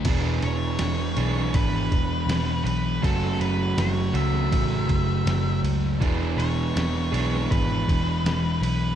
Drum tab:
CC |x---------------|----------------|----------------|
RD |x-x-x-x-x-x-x-x-|x-x-x-x-x-x-x-x-|x-x-x-x-x-x-x-x-|
SD |----o--o----o---|----o--o----o---|----o--o----o---|
BD |o-------o-o-----|o-------o-o-----|o-------o-o-----|